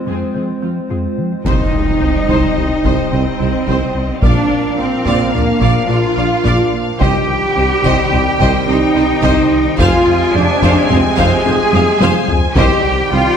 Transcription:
Already playing: ambient pad G#3 C4 F4 C5
0.06 cello section F2, analog synth bass F2, synth pluck F3, viola section C4 G#4
0.33 cello section F2, analog synth bass F3, synth pluck C4, viola section C4 G#4
0.61 cello section F2, analog synth bass F3, viola section G#3 F4, synth pluck C4
0.90 cello section F2, analog synth bass F2, viola section C4 G#4, synth pluck F4
1.18 analog synth bass F3
1.45 double bass section C2, tuba C2, analog synth bass C2, synth pluck C3, trombone section G3 C4, ambient pad G3 C4 D#4 C5, french horn section D#4, cello section D#4, viola section C5, violin section C5 D#5, taiko, impact
1.73 analog synth bass C2
2.01 analog synth bass C2, double bass section C2, tuba C2, synth pluck C4, viola section C5, violin section C5
2.29 analog synth bass C2, double bass section C2, tuba C2, synth pluck C3, violin section C5, viola section C5, taiko
2.56 double bass section C2, tuba C2, analog synth bass C2, synth pluck D#3, viola section C5, violin section C5
2.84 double bass section C2, analog synth bass C2, tuba C2, synth pluck C3, viola section C5, violin section C5, taiko
3.11 double bass section C2, analog synth bass C2, tuba C2, cello section C4, synth pluck C4, french horn section C4, viola section C5, violin section C5
3.39 analog synth bass C2, double bass section C2, tuba C2, synth pluck C4, viola section C5, violin section C5
3.67 analog synth bass C2, double bass section C2, tuba C2, synth pluck C3, viola section C5, violin section C5, taiko
3.95 analog synth bass C2
4.22 tuba A#1, double bass section A#1, analog synth bass A#2, trombone section F3 A#3, ambient pad F3 D4 F4 A#4, synth pluck A#3, french horn section D4, cello section D4, viola section D5, violin section F5, taiko
4.51 analog synth bass A#2
4.77 double bass section A#1, tuba A#1, analog synth bass A#2, french horn section C4, cello section C4, synth pluck A#4, viola section D5, violin section F5
5.06 double bass section A#1, tuba A#1, analog synth bass A#2, synth pluck A#3, viola section D5, violin section F5, taiko
5.33 double bass section A#1, tuba A#1, analog synth bass A#2, french horn section A#3, cello section A#3, synth pluck D4, viola section D5, violin section F5, taiko low
5.60 double bass section A#1, tuba A#1, analog synth bass A#2, synth pluck A#3, viola section D5, violin section F5, taiko
5.88 double bass section A#1, tuba A#1, analog synth bass A#2, french horn section F4, cello section F4, synth pluck A#4, viola section D5, violin section F5
6.16 double bass section A#1, tuba A#1, analog synth bass A#2, synth pluck A#4, viola section D5, violin section F5
6.44 double bass section A#1, tuba A#1, analog synth bass A#2, synth pluck A#3, viola section D5, violin section F5, taiko
6.74 analog synth bass A#2
7.00 double bass section C2, tuba C2, analog synth bass C2, synth pluck C3, trombone section D#3 G3, ambient pad D#3 C4 G4 C5, french horn section G4, cello section G4, viola section C5, violin section D#5 G5, taiko
7.29 analog synth bass C2
7.56 double bass section C2, tuba C2, analog synth bass C2, synth pluck C4, viola section C5, violin section D#5
7.83 double bass section C2, tuba C2, analog synth bass C2, synth pluck C3, viola section C5, violin section D#5, taiko
8.11 double bass section C2, tuba C2, analog synth bass C2, synth pluck D#3, viola section C5, violin section D#5, taiko low
8.39 double bass section C2, tuba C2, analog synth bass C2, synth pluck C3, viola section C5, violin section D#5, taiko
8.67 tuba C2, double bass section C2, analog synth bass C2, synth pluck C4, cello section D#4, french horn section D#4, viola section C5, violin section D#5
8.95 double bass section C2, tuba C2, analog synth bass C2, synth pluck C4, viola section C5, violin section D#5
9.22 double bass section C2, analog synth bass C2, tuba C2, synth pluck C3, viola section C5, violin section D#5, taiko
9.51 analog synth bass C2
9.78 tuba F1, double bass section F2, analog synth bass F2, trombone section C3 G#3, ambient pad F3 G#4, synth pluck F3, cello section F4, french horn section F4, viola section C5, violin section F5 G#5, taiko
10.07 analog synth bass F2
10.34 tuba F1, double bass section F2, analog synth bass F2, cello section D4, french horn section D4, synth pluck F4, viola section C5, violin section F5
10.62 tuba F1, analog synth bass F2, double bass section F2, synth pluck F3, viola section C5, violin section F5, taiko
10.89 tuba F1, analog synth bass F2, double bass section F2, synth pluck G#3, cello section C4, french horn section C4, viola section C5, violin section F5, taiko low
11.17 tuba F1, analog synth bass F2, double bass section F2, synth pluck F3, viola section C5, violin section F5, taiko
11.45 tuba F1, analog synth bass F2, double bass section F2, synth pluck F4, cello section G#4, french horn section G#4, viola section C5, violin section F5
11.73 tuba F1, double bass section F2, analog synth bass F2, synth pluck F4, viola section C5, violin section F5, taiko high
12.01 tuba F1, analog synth bass F2, double bass section F2, synth pluck F3, viola section C5, violin section F5, taiko high
12.29 analog synth bass F2, taiko low
12.56 double bass section C2, analog synth bass C2, tuba C2, synth pluck C3, ambient pad D#3 C4 G4 C5, trombone section D#3 G3, cello section G4, french horn section G4, viola section C5, violin section D#5 G5, taiko
12.84 analog synth bass C2
13.11 double bass section C2, tuba C2, analog synth bass C2, synth pluck C4, cello section F4, french horn section F4, viola section C5, violin section D#5

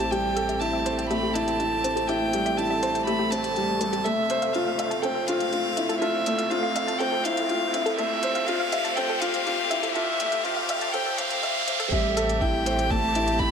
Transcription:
Already playing: sub bass A1, felt piano G3 A3 C4 E4 C5, string section A3 C4 G4, violin A5, riser
0.11 felt piano G3, synth arpeggio sound G4, violin G5, closed hi-hat
0.36 felt piano A4, closed hi-hat
0.49 synth arpeggio sound E5, closed hi-hat
0.60 felt piano E4, violin A5, closed hi-hat
0.73 synth arpeggio sound E5
0.85 felt piano C5, synth arpeggio sound C5, closed hi-hat
0.98 synth arpeggio sound G5, closed hi-hat
1.09 felt piano A3, synth arpeggio sound G4, violin B5, closed hi-hat
1.23 synth arpeggio sound G4
1.34 felt piano E4, violin A5, closed hi-hat
1.48 closed hi-hat
1.60 felt piano E4, closed hi-hat
1.84 felt piano C4, synth arpeggio sound C5, closed hi-hat
1.96 synth arpeggio sound G4, closed hi-hat
2.08 felt piano E4, synth arpeggio sound G4, violin G5, closed hi-hat
2.33 felt piano G3, closed hi-hat
2.46 synth arpeggio sound E5, closed hi-hat
2.57 felt piano E4, violin A5, closed hi-hat
2.70 synth arpeggio sound E5
2.82 felt piano C5, synth arpeggio sound C5, closed hi-hat
2.95 synth arpeggio sound G5, closed hi-hat
3.06 felt piano A3, synth arpeggio sound G4, violin B5, closed hi-hat
3.19 synth arpeggio sound G4
3.31 felt piano C4, violin A5, closed hi-hat
3.44 closed hi-hat
3.56 felt piano G3, closed hi-hat
3.81 felt piano G3, synth arpeggio sound C5, closed hi-hat
3.93 synth arpeggio sound G4, closed hi-hat
4.04 sub bass F1, felt piano A3, string section C4, synth arpeggio sound A4, violin E5, closed hi-hat
4.30 felt piano C5, closed hi-hat
4.42 synth arpeggio sound F5, closed hi-hat
4.53 felt piano F4, violin F5, closed hi-hat
4.67 synth arpeggio sound F5
4.78 synth arpeggio sound E5, felt piano E5, closed hi-hat
4.91 synth arpeggio sound A5, closed hi-hat
5.03 felt piano C4, synth arpeggio sound A4, violin G5, closed hi-hat
5.15 synth arpeggio sound A4
5.27 felt piano F4, violin F5, closed hi-hat
5.40 closed hi-hat
5.53 felt piano F4, closed hi-hat
5.77 felt piano E4, synth arpeggio sound E5, closed hi-hat
5.89 synth arpeggio sound A4, closed hi-hat
6.01 felt piano F4, synth arpeggio sound A4, violin E5, closed hi-hat
6.26 felt piano A3, closed hi-hat
6.38 synth arpeggio sound F5, closed hi-hat
6.50 felt piano F4, violin F5, closed hi-hat
6.63 synth arpeggio sound F5
6.75 synth arpeggio sound E5, felt piano E5, closed hi-hat
6.88 synth arpeggio sound A5, closed hi-hat
6.99 felt piano C4, synth arpeggio sound A4, violin G5, closed hi-hat
7.12 synth arpeggio sound A4
7.24 felt piano E4, violin F5, closed hi-hat
7.37 closed hi-hat
7.49 felt piano F4, closed hi-hat
7.73 felt piano E4, synth arpeggio sound E5, closed hi-hat
7.86 synth arpeggio sound A4, closed hi-hat
7.97 felt piano A3, string section G4, synth arpeggio sound A4, violin E5, closed hi-hat
8.23 felt piano C5, closed hi-hat
8.35 synth arpeggio sound F5, closed hi-hat
8.46 felt piano F4, violin F5, closed hi-hat
8.60 synth arpeggio sound F5
8.72 synth arpeggio sound E5, felt piano E5, closed hi-hat
8.85 synth arpeggio sound A5, closed hi-hat
8.96 felt piano C4, synth arpeggio sound A4, violin G5, closed hi-hat
9.09 synth arpeggio sound A4
9.20 felt piano F4, violin F5, closed hi-hat
9.34 closed hi-hat
9.46 felt piano F4, closed hi-hat
9.70 felt piano E4, synth arpeggio sound E5, closed hi-hat
9.83 synth arpeggio sound A4, closed hi-hat
9.95 felt piano F4, synth arpeggio sound A4, violin E5, closed hi-hat
10.20 felt piano A3, closed hi-hat
10.32 synth arpeggio sound F5, closed hi-hat
10.44 felt piano F4, violin F5, closed hi-hat
10.57 synth arpeggio sound F5
10.69 synth arpeggio sound E5, felt piano E5, closed hi-hat
10.81 synth arpeggio sound A5, closed hi-hat
10.93 felt piano C4, synth arpeggio sound A4, violin G5, closed hi-hat
11.06 synth arpeggio sound A4
11.18 felt piano C4, violin F5, closed hi-hat
11.30 closed hi-hat
11.43 felt piano E5, closed hi-hat
11.67 felt piano C4, synth arpeggio sound E5, closed hi-hat
11.80 synth arpeggio sound A4, closed hi-hat
11.92 sub bass A1, felt piano G3, string section A3 C4 G4, violin E5, kick, closed hi-hat
12.17 felt piano A4, closed hi-hat
12.29 closed hi-hat
12.41 felt piano E4, violin G5, kick, closed hi-hat
12.66 felt piano C5, closed hi-hat
12.79 closed hi-hat
12.90 felt piano A3, violin A5, kick, closed hi-hat
13.15 felt piano E4, closed hi-hat
13.28 closed hi-hat
13.39 felt piano E4, violin B5, kick, closed hi-hat

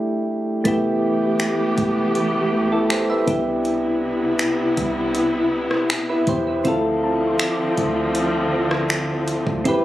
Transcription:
Already playing: synth keys A3 D4 E4 G4
0.64 808-style bass F1, string section E3 A3 B3 G4, synth keys A3 B3 E4, kick, closed hi-hat
0.68 synth keys G4
1.40 finger snap, closed hi-hat
1.78 808-style bass F1, kick, closed hi-hat
2.15 closed hi-hat
2.53 808-style bass C2
2.72 synth keys E4 A4
2.90 synth keys G4 C5, finger snap
3.10 synth keys B4 E5
3.26 808-style bass C2, string section C3 B3 E4, synth keys B3 D4 E4, kick, closed hi-hat
3.30 synth keys G4
3.65 closed hi-hat
4.39 finger snap, closed hi-hat
4.77 808-style bass C2, kick, closed hi-hat
5.15 closed hi-hat
5.71 cross-stick
5.90 finger snap
6.09 synth keys E4 B4
6.27 808-style bass E2, synth keys G4 C5, kick, closed hi-hat
6.47 synth keys E4 B4
6.64 808-style bass D2, string section D3 F3 C4, synth keys C4 E4 F4 A4, kick, closed hi-hat
7.04 synth pluck A5
7.27 synth pluck C6
7.39 finger snap, closed hi-hat
7.51 synth pluck D6
7.77 808-style bass D2, kick, closed hi-hat
8.15 closed hi-hat
8.71 cross-stick
8.90 finger snap
9.28 closed hi-hat
9.47 808-style bass D2, kick
9.64 808-style bass A1, string section C3 A3 G4, synth keys C4 E4 G4, kick, closed hi-hat
9.68 synth keys B4

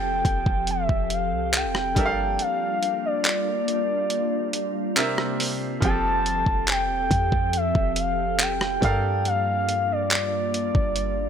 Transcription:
Already playing: 808-style bass F1, grand piano F3 C4 G4 A4 G5, ambient pad F3 C4 G4 A4, soft synth lead G5
0.25 808-style bass F1, kick, closed hi-hat
0.46 808-style bass F1, kick
0.67 soft synth lead E5, closed hi-hat
0.89 808-style bass F1, kick
1.10 soft synth lead F5, closed hi-hat
1.32 808-style bass C2
1.53 soft synth lead G5, clap, closed hi-hat
1.65 808-style bass F1
1.75 cross-stick
1.95 808-style bass G1, grand piano G3 D4 A4 A#4, ambient pad G3 A#3 D4 F4, kick, closed hi-hat
1.99 grand piano E5
2.06 grand piano F5
2.39 soft synth lead F5, closed hi-hat
2.83 closed hi-hat
3.05 soft synth lead D5
3.24 clap, closed hi-hat
3.68 closed hi-hat
4.10 closed hi-hat
4.53 closed hi-hat
4.96 ambient pad C3 A#3 C4, grand piano C3 C4 D4 A#4 E5, clap, closed hi-hat
5.18 cross-stick
5.40 open hi-hat
5.80 808-style bass F1, grand piano F3 C4 G4 G#4, ambient pad F3 G4 A4, kick, closed hi-hat
5.85 grand piano G5, soft synth lead A5
5.90 grand piano A4
6.26 closed hi-hat
6.46 808-style bass F1, kick
6.67 soft synth lead G5, clap, closed hi-hat
6.89 808-style bass E1
7.11 808-style bass F2, kick, closed hi-hat
7.32 kick
7.53 soft synth lead E5, closed hi-hat
7.75 808-style bass F1, kick
7.96 soft synth lead F5, closed hi-hat
8.39 soft synth lead G5, clap, closed hi-hat
8.61 cross-stick
8.81 808-style bass G2, grand piano G3 D4 A4 A#4 F5, ambient pad G3 A#3 D4 F4, kick, closed hi-hat
9.25 soft synth lead F5, closed hi-hat
9.69 closed hi-hat
9.92 soft synth lead D5
10.10 clap, closed hi-hat
10.54 closed hi-hat
10.75 808-style bass G1, kick
10.96 closed hi-hat

